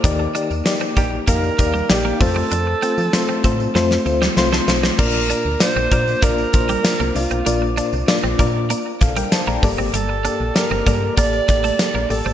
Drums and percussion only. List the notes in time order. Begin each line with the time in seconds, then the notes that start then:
0.04 kick, closed hi-hat, tambourine
0.35 closed hi-hat, tambourine
0.51 tambourine
0.66 snare, closed hi-hat, tambourine
0.97 kick, closed hi-hat, tambourine
1.27 kick, closed hi-hat, tambourine
1.44 tambourine
1.59 kick, closed hi-hat, tambourine
1.75 tambourine
1.90 snare, closed hi-hat, tambourine
2.21 kick, open hi-hat, tambourine
2.51 closed hi-hat, tambourine
2.82 closed hi-hat, tambourine
2.98 tambourine
3.13 snare, closed hi-hat, tambourine
3.44 kick, closed hi-hat, tambourine
3.60 tambourine
3.75 snare, tambourine
3.91 snare, tambourine
4.06 tambourine
4.22 snare
4.37 snare, tambourine
4.53 snare
4.68 snare, tambourine
4.83 snare
4.99 kick, crash, tambourine
5.30 closed hi-hat, tambourine
5.60 snare, closed hi-hat, tambourine
5.91 kick, closed hi-hat, tambourine
6.08 tambourine
6.22 kick, closed hi-hat, tambourine
6.38 tambourine
6.53 kick, closed hi-hat, tambourine
6.69 closed hi-hat, tambourine
6.85 snare, closed hi-hat, tambourine
7.16 open hi-hat, tambourine
7.31 closed hi-hat
7.46 closed hi-hat, tambourine
7.77 closed hi-hat, tambourine
7.93 tambourine
8.08 snare, closed hi-hat, tambourine
8.39 kick, closed hi-hat, tambourine
8.70 closed hi-hat, tambourine
9.01 kick, closed hi-hat, tambourine
9.16 closed hi-hat
9.32 snare, closed hi-hat, tambourine
9.63 kick, open hi-hat, tambourine
9.94 closed hi-hat, tambourine
10.25 closed hi-hat, tambourine
10.56 snare, closed hi-hat, tambourine
10.87 kick, closed hi-hat, tambourine
11.17 kick, closed hi-hat, tambourine
11.33 tambourine
11.48 kick, closed hi-hat, tambourine
11.64 closed hi-hat
11.79 snare, closed hi-hat, tambourine
12.10 open hi-hat, tambourine